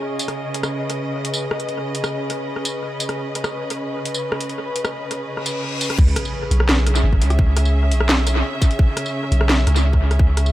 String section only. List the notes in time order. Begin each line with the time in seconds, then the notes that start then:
Already playing: C#3 C#4 G#4 D#5
0.48 B4
5.98 C#3
6.07 G#4
6.24 C#4
6.85 E5